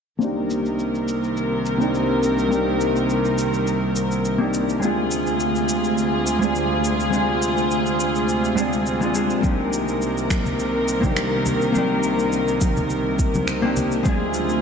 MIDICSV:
0, 0, Header, 1, 4, 480
1, 0, Start_track
1, 0, Key_signature, -3, "minor"
1, 0, Tempo, 576923
1, 176, Time_signature, 4, 2, 24, 8
1, 12161, End_track
2, 0, Start_track
2, 0, Title_t, "Hollow-body jazz guitar"
2, 0, Program_c, 0, 26
2, 156, Note_on_c, 0, 58, 67
2, 166, Note_on_c, 0, 60, 62
2, 179, Note_on_c, 0, 62, 61
2, 192, Note_on_c, 0, 63, 64
2, 203, Note_on_c, 0, 67, 70
2, 1463, Note_off_c, 0, 58, 0
2, 1468, Note_off_c, 0, 60, 0
2, 1474, Note_off_c, 0, 62, 0
2, 1481, Note_off_c, 0, 63, 0
2, 1483, Note_on_c, 0, 58, 62
2, 1486, Note_off_c, 0, 67, 0
2, 1496, Note_on_c, 0, 60, 56
2, 1507, Note_on_c, 0, 62, 57
2, 1518, Note_on_c, 0, 63, 57
2, 1532, Note_on_c, 0, 67, 67
2, 2058, Note_off_c, 0, 58, 0
2, 2065, Note_off_c, 0, 60, 0
2, 2070, Note_off_c, 0, 62, 0
2, 2070, Note_on_c, 0, 58, 62
2, 2076, Note_off_c, 0, 63, 0
2, 2083, Note_off_c, 0, 67, 0
2, 2083, Note_on_c, 0, 60, 55
2, 2094, Note_on_c, 0, 62, 55
2, 2107, Note_on_c, 0, 63, 55
2, 2121, Note_on_c, 0, 67, 64
2, 3620, Note_off_c, 0, 58, 0
2, 3626, Note_off_c, 0, 60, 0
2, 3632, Note_off_c, 0, 62, 0
2, 3638, Note_off_c, 0, 63, 0
2, 3645, Note_off_c, 0, 67, 0
2, 3647, Note_on_c, 0, 58, 63
2, 3654, Note_on_c, 0, 60, 60
2, 3661, Note_on_c, 0, 62, 56
2, 3665, Note_on_c, 0, 63, 57
2, 3672, Note_on_c, 0, 67, 73
2, 3980, Note_off_c, 0, 58, 0
2, 3984, Note_off_c, 0, 60, 0
2, 3987, Note_off_c, 0, 62, 0
2, 3989, Note_off_c, 0, 63, 0
2, 3990, Note_on_c, 0, 56, 67
2, 3993, Note_off_c, 0, 67, 0
2, 4003, Note_on_c, 0, 60, 66
2, 4012, Note_on_c, 0, 62, 64
2, 4026, Note_on_c, 0, 65, 67
2, 4037, Note_on_c, 0, 68, 78
2, 5300, Note_off_c, 0, 56, 0
2, 5306, Note_off_c, 0, 60, 0
2, 5311, Note_off_c, 0, 62, 0
2, 5318, Note_off_c, 0, 65, 0
2, 5318, Note_on_c, 0, 56, 59
2, 5323, Note_off_c, 0, 68, 0
2, 5327, Note_on_c, 0, 60, 59
2, 5342, Note_on_c, 0, 62, 55
2, 5353, Note_on_c, 0, 65, 57
2, 5363, Note_on_c, 0, 68, 70
2, 5896, Note_off_c, 0, 56, 0
2, 5900, Note_off_c, 0, 60, 0
2, 5907, Note_off_c, 0, 62, 0
2, 5909, Note_on_c, 0, 56, 62
2, 5913, Note_off_c, 0, 65, 0
2, 5918, Note_off_c, 0, 68, 0
2, 5920, Note_on_c, 0, 60, 55
2, 5933, Note_on_c, 0, 62, 59
2, 5945, Note_on_c, 0, 65, 59
2, 5957, Note_on_c, 0, 68, 72
2, 7100, Note_off_c, 0, 56, 0
2, 7105, Note_off_c, 0, 60, 0
2, 7112, Note_off_c, 0, 62, 0
2, 7118, Note_off_c, 0, 65, 0
2, 7120, Note_on_c, 0, 56, 86
2, 7124, Note_off_c, 0, 68, 0
2, 7127, Note_on_c, 0, 60, 79
2, 7132, Note_on_c, 0, 62, 81
2, 7138, Note_on_c, 0, 65, 81
2, 7144, Note_on_c, 0, 68, 102
2, 7238, Note_off_c, 0, 56, 0
2, 7241, Note_off_c, 0, 60, 0
2, 7244, Note_off_c, 0, 62, 0
2, 7246, Note_off_c, 0, 65, 0
2, 7250, Note_off_c, 0, 68, 0
2, 7494, Note_on_c, 0, 56, 74
2, 7499, Note_on_c, 0, 60, 64
2, 7504, Note_on_c, 0, 62, 69
2, 7511, Note_on_c, 0, 65, 67
2, 7517, Note_on_c, 0, 68, 80
2, 7584, Note_off_c, 0, 56, 0
2, 7586, Note_off_c, 0, 60, 0
2, 7589, Note_off_c, 0, 62, 0
2, 7592, Note_off_c, 0, 65, 0
2, 7595, Note_off_c, 0, 68, 0
2, 7601, Note_on_c, 0, 56, 77
2, 7605, Note_on_c, 0, 60, 71
2, 7612, Note_on_c, 0, 62, 70
2, 7618, Note_on_c, 0, 65, 68
2, 7623, Note_on_c, 0, 68, 79
2, 7821, Note_off_c, 0, 56, 0
2, 7823, Note_off_c, 0, 60, 0
2, 7827, Note_off_c, 0, 62, 0
2, 7827, Note_on_c, 0, 58, 70
2, 7830, Note_off_c, 0, 65, 0
2, 7832, Note_off_c, 0, 68, 0
2, 7839, Note_on_c, 0, 60, 65
2, 7852, Note_on_c, 0, 62, 67
2, 7863, Note_on_c, 0, 63, 62
2, 7874, Note_on_c, 0, 67, 72
2, 9139, Note_off_c, 0, 58, 0
2, 9144, Note_off_c, 0, 60, 0
2, 9151, Note_off_c, 0, 62, 0
2, 9157, Note_off_c, 0, 63, 0
2, 9158, Note_on_c, 0, 58, 63
2, 9162, Note_off_c, 0, 67, 0
2, 9169, Note_on_c, 0, 60, 63
2, 9181, Note_on_c, 0, 62, 61
2, 9194, Note_on_c, 0, 63, 59
2, 9206, Note_on_c, 0, 67, 67
2, 9736, Note_off_c, 0, 58, 0
2, 9741, Note_off_c, 0, 60, 0
2, 9747, Note_off_c, 0, 62, 0
2, 9753, Note_on_c, 0, 58, 61
2, 9754, Note_off_c, 0, 63, 0
2, 9760, Note_off_c, 0, 67, 0
2, 9767, Note_on_c, 0, 60, 63
2, 9778, Note_on_c, 0, 62, 60
2, 9792, Note_on_c, 0, 63, 57
2, 9803, Note_on_c, 0, 67, 71
2, 11302, Note_off_c, 0, 58, 0
2, 11308, Note_off_c, 0, 60, 0
2, 11314, Note_off_c, 0, 62, 0
2, 11321, Note_off_c, 0, 63, 0
2, 11327, Note_off_c, 0, 67, 0
2, 11333, Note_on_c, 0, 58, 69
2, 11339, Note_on_c, 0, 60, 63
2, 11345, Note_on_c, 0, 62, 64
2, 11353, Note_on_c, 0, 63, 59
2, 11358, Note_on_c, 0, 67, 75
2, 11663, Note_off_c, 0, 58, 0
2, 11666, Note_off_c, 0, 60, 0
2, 11669, Note_off_c, 0, 62, 0
2, 11673, Note_off_c, 0, 63, 0
2, 11674, Note_on_c, 0, 56, 73
2, 11676, Note_off_c, 0, 67, 0
2, 11685, Note_on_c, 0, 60, 62
2, 11698, Note_on_c, 0, 62, 67
2, 11709, Note_on_c, 0, 65, 67
2, 11722, Note_on_c, 0, 68, 82
2, 12161, Note_off_c, 0, 56, 0
2, 12161, Note_off_c, 0, 60, 0
2, 12161, Note_off_c, 0, 62, 0
2, 12161, Note_off_c, 0, 65, 0
2, 12161, Note_off_c, 0, 68, 0
2, 12161, End_track
3, 0, Start_track
3, 0, Title_t, "String section"
3, 0, Program_c, 1, 48
3, 180, Note_on_c, 1, 51, 65
3, 181, Note_on_c, 1, 48, 65
3, 182, Note_on_c, 1, 36, 68
3, 183, Note_on_c, 1, 70, 76
3, 3984, Note_off_c, 1, 51, 0
3, 3985, Note_off_c, 1, 36, 0
3, 3985, Note_off_c, 1, 48, 0
3, 3986, Note_off_c, 1, 70, 0
3, 4010, Note_on_c, 1, 68, 79
3, 4012, Note_on_c, 1, 38, 76
3, 4014, Note_on_c, 1, 48, 66
3, 4014, Note_on_c, 1, 65, 67
3, 7819, Note_off_c, 1, 68, 0
3, 7820, Note_off_c, 1, 38, 0
3, 7821, Note_off_c, 1, 65, 0
3, 7857, Note_on_c, 1, 70, 80
3, 7859, Note_on_c, 1, 51, 69
3, 7860, Note_on_c, 1, 36, 71
3, 11661, Note_off_c, 1, 48, 0
3, 11663, Note_off_c, 1, 70, 0
3, 11664, Note_off_c, 1, 36, 0
3, 11664, Note_off_c, 1, 51, 0
3, 11691, Note_on_c, 1, 38, 76
3, 11691, Note_on_c, 1, 65, 73
3, 11693, Note_on_c, 1, 48, 70
3, 11694, Note_on_c, 1, 68, 84
3, 12161, Note_off_c, 1, 38, 0
3, 12161, Note_off_c, 1, 48, 0
3, 12161, Note_off_c, 1, 65, 0
3, 12161, Note_off_c, 1, 68, 0
3, 12161, End_track
4, 0, Start_track
4, 0, Title_t, "Drums"
4, 179, Note_on_c, 9, 69, 38
4, 262, Note_off_c, 9, 69, 0
4, 418, Note_on_c, 9, 69, 63
4, 501, Note_off_c, 9, 69, 0
4, 545, Note_on_c, 9, 69, 28
4, 628, Note_off_c, 9, 69, 0
4, 659, Note_on_c, 9, 69, 37
4, 742, Note_off_c, 9, 69, 0
4, 788, Note_on_c, 9, 69, 26
4, 871, Note_off_c, 9, 69, 0
4, 899, Note_on_c, 9, 69, 61
4, 982, Note_off_c, 9, 69, 0
4, 1029, Note_on_c, 9, 69, 26
4, 1112, Note_off_c, 9, 69, 0
4, 1140, Note_on_c, 9, 69, 34
4, 1223, Note_off_c, 9, 69, 0
4, 1379, Note_on_c, 9, 69, 64
4, 1462, Note_off_c, 9, 69, 0
4, 1507, Note_on_c, 9, 69, 29
4, 1590, Note_off_c, 9, 69, 0
4, 1619, Note_on_c, 9, 69, 38
4, 1702, Note_off_c, 9, 69, 0
4, 1856, Note_on_c, 9, 69, 63
4, 1939, Note_off_c, 9, 69, 0
4, 1985, Note_on_c, 9, 69, 29
4, 2068, Note_off_c, 9, 69, 0
4, 2097, Note_on_c, 9, 69, 39
4, 2181, Note_off_c, 9, 69, 0
4, 2335, Note_on_c, 9, 69, 64
4, 2418, Note_off_c, 9, 69, 0
4, 2463, Note_on_c, 9, 69, 28
4, 2546, Note_off_c, 9, 69, 0
4, 2576, Note_on_c, 9, 69, 38
4, 2659, Note_off_c, 9, 69, 0
4, 2704, Note_on_c, 9, 69, 26
4, 2787, Note_off_c, 9, 69, 0
4, 2813, Note_on_c, 9, 69, 71
4, 2896, Note_off_c, 9, 69, 0
4, 2943, Note_on_c, 9, 69, 28
4, 3026, Note_off_c, 9, 69, 0
4, 3054, Note_on_c, 9, 69, 36
4, 3137, Note_off_c, 9, 69, 0
4, 3293, Note_on_c, 9, 69, 65
4, 3376, Note_off_c, 9, 69, 0
4, 3422, Note_on_c, 9, 69, 30
4, 3506, Note_off_c, 9, 69, 0
4, 3536, Note_on_c, 9, 69, 41
4, 3619, Note_off_c, 9, 69, 0
4, 3775, Note_on_c, 9, 69, 66
4, 3858, Note_off_c, 9, 69, 0
4, 3903, Note_on_c, 9, 69, 29
4, 3987, Note_off_c, 9, 69, 0
4, 4014, Note_on_c, 9, 69, 39
4, 4097, Note_off_c, 9, 69, 0
4, 4252, Note_on_c, 9, 69, 66
4, 4335, Note_off_c, 9, 69, 0
4, 4381, Note_on_c, 9, 69, 28
4, 4465, Note_off_c, 9, 69, 0
4, 4492, Note_on_c, 9, 69, 41
4, 4576, Note_off_c, 9, 69, 0
4, 4622, Note_on_c, 9, 69, 28
4, 4705, Note_off_c, 9, 69, 0
4, 4732, Note_on_c, 9, 69, 71
4, 4815, Note_off_c, 9, 69, 0
4, 4861, Note_on_c, 9, 69, 29
4, 4944, Note_off_c, 9, 69, 0
4, 4973, Note_on_c, 9, 69, 39
4, 5056, Note_off_c, 9, 69, 0
4, 5214, Note_on_c, 9, 69, 71
4, 5297, Note_off_c, 9, 69, 0
4, 5344, Note_on_c, 9, 69, 31
4, 5427, Note_off_c, 9, 69, 0
4, 5452, Note_on_c, 9, 69, 40
4, 5535, Note_off_c, 9, 69, 0
4, 5694, Note_on_c, 9, 69, 67
4, 5777, Note_off_c, 9, 69, 0
4, 5824, Note_on_c, 9, 69, 32
4, 5907, Note_off_c, 9, 69, 0
4, 5933, Note_on_c, 9, 69, 38
4, 6016, Note_off_c, 9, 69, 0
4, 6175, Note_on_c, 9, 69, 68
4, 6258, Note_off_c, 9, 69, 0
4, 6302, Note_on_c, 9, 69, 28
4, 6385, Note_off_c, 9, 69, 0
4, 6413, Note_on_c, 9, 69, 38
4, 6497, Note_off_c, 9, 69, 0
4, 6542, Note_on_c, 9, 69, 28
4, 6625, Note_off_c, 9, 69, 0
4, 6655, Note_on_c, 9, 69, 67
4, 6738, Note_off_c, 9, 69, 0
4, 6784, Note_on_c, 9, 69, 28
4, 6867, Note_off_c, 9, 69, 0
4, 6894, Note_on_c, 9, 69, 38
4, 6978, Note_off_c, 9, 69, 0
4, 7025, Note_on_c, 9, 69, 26
4, 7108, Note_off_c, 9, 69, 0
4, 7135, Note_on_c, 9, 69, 68
4, 7219, Note_off_c, 9, 69, 0
4, 7263, Note_on_c, 9, 69, 29
4, 7346, Note_off_c, 9, 69, 0
4, 7374, Note_on_c, 9, 69, 38
4, 7457, Note_off_c, 9, 69, 0
4, 7501, Note_on_c, 9, 69, 27
4, 7585, Note_off_c, 9, 69, 0
4, 7610, Note_on_c, 9, 69, 67
4, 7693, Note_off_c, 9, 69, 0
4, 7738, Note_on_c, 9, 69, 29
4, 7822, Note_off_c, 9, 69, 0
4, 7848, Note_on_c, 9, 63, 71
4, 7853, Note_on_c, 9, 69, 41
4, 7854, Note_on_c, 9, 36, 99
4, 7932, Note_off_c, 9, 63, 0
4, 7936, Note_off_c, 9, 69, 0
4, 7937, Note_off_c, 9, 36, 0
4, 8095, Note_on_c, 9, 69, 65
4, 8179, Note_off_c, 9, 69, 0
4, 8221, Note_on_c, 9, 69, 28
4, 8304, Note_off_c, 9, 69, 0
4, 8335, Note_on_c, 9, 69, 38
4, 8418, Note_off_c, 9, 69, 0
4, 8466, Note_on_c, 9, 69, 28
4, 8549, Note_off_c, 9, 69, 0
4, 8573, Note_on_c, 9, 26, 64
4, 8573, Note_on_c, 9, 63, 63
4, 8574, Note_on_c, 9, 36, 93
4, 8575, Note_on_c, 9, 69, 72
4, 8656, Note_off_c, 9, 26, 0
4, 8656, Note_off_c, 9, 63, 0
4, 8658, Note_off_c, 9, 36, 0
4, 8658, Note_off_c, 9, 69, 0
4, 8702, Note_on_c, 9, 69, 29
4, 8705, Note_on_c, 9, 64, 72
4, 8786, Note_off_c, 9, 69, 0
4, 8788, Note_off_c, 9, 64, 0
4, 8814, Note_on_c, 9, 69, 37
4, 8897, Note_off_c, 9, 69, 0
4, 9053, Note_on_c, 9, 69, 68
4, 9136, Note_off_c, 9, 69, 0
4, 9181, Note_on_c, 9, 64, 75
4, 9182, Note_on_c, 9, 69, 28
4, 9183, Note_on_c, 9, 36, 54
4, 9190, Note_on_c, 9, 63, 80
4, 9264, Note_off_c, 9, 64, 0
4, 9265, Note_off_c, 9, 69, 0
4, 9266, Note_off_c, 9, 36, 0
4, 9273, Note_off_c, 9, 63, 0
4, 9289, Note_on_c, 9, 26, 61
4, 9291, Note_on_c, 9, 69, 38
4, 9373, Note_off_c, 9, 26, 0
4, 9374, Note_off_c, 9, 69, 0
4, 9533, Note_on_c, 9, 69, 65
4, 9539, Note_on_c, 9, 64, 66
4, 9616, Note_off_c, 9, 69, 0
4, 9622, Note_off_c, 9, 64, 0
4, 9663, Note_on_c, 9, 69, 30
4, 9747, Note_off_c, 9, 69, 0
4, 9775, Note_on_c, 9, 69, 38
4, 9784, Note_on_c, 9, 63, 67
4, 9858, Note_off_c, 9, 69, 0
4, 9868, Note_off_c, 9, 63, 0
4, 10010, Note_on_c, 9, 69, 62
4, 10093, Note_off_c, 9, 69, 0
4, 10142, Note_on_c, 9, 69, 29
4, 10225, Note_off_c, 9, 69, 0
4, 10253, Note_on_c, 9, 69, 37
4, 10336, Note_off_c, 9, 69, 0
4, 10382, Note_on_c, 9, 69, 27
4, 10465, Note_off_c, 9, 69, 0
4, 10491, Note_on_c, 9, 69, 70
4, 10495, Note_on_c, 9, 36, 92
4, 10498, Note_on_c, 9, 63, 63
4, 10575, Note_off_c, 9, 69, 0
4, 10578, Note_off_c, 9, 36, 0
4, 10581, Note_off_c, 9, 63, 0
4, 10622, Note_on_c, 9, 69, 26
4, 10628, Note_on_c, 9, 64, 77
4, 10705, Note_off_c, 9, 69, 0
4, 10712, Note_off_c, 9, 64, 0
4, 10732, Note_on_c, 9, 69, 37
4, 10816, Note_off_c, 9, 69, 0
4, 10974, Note_on_c, 9, 36, 84
4, 10974, Note_on_c, 9, 69, 64
4, 11057, Note_off_c, 9, 36, 0
4, 11057, Note_off_c, 9, 69, 0
4, 11102, Note_on_c, 9, 69, 29
4, 11107, Note_on_c, 9, 63, 71
4, 11111, Note_on_c, 9, 64, 74
4, 11185, Note_off_c, 9, 69, 0
4, 11190, Note_off_c, 9, 63, 0
4, 11195, Note_off_c, 9, 64, 0
4, 11212, Note_on_c, 9, 26, 66
4, 11213, Note_on_c, 9, 69, 36
4, 11295, Note_off_c, 9, 26, 0
4, 11296, Note_off_c, 9, 69, 0
4, 11451, Note_on_c, 9, 69, 63
4, 11456, Note_on_c, 9, 64, 71
4, 11535, Note_off_c, 9, 69, 0
4, 11539, Note_off_c, 9, 64, 0
4, 11578, Note_on_c, 9, 69, 29
4, 11662, Note_off_c, 9, 69, 0
4, 11690, Note_on_c, 9, 69, 42
4, 11694, Note_on_c, 9, 36, 96
4, 11698, Note_on_c, 9, 63, 78
4, 11773, Note_off_c, 9, 69, 0
4, 11777, Note_off_c, 9, 36, 0
4, 11781, Note_off_c, 9, 63, 0
4, 11929, Note_on_c, 9, 69, 63
4, 12013, Note_off_c, 9, 69, 0
4, 12057, Note_on_c, 9, 69, 29
4, 12140, Note_off_c, 9, 69, 0
4, 12161, End_track
0, 0, End_of_file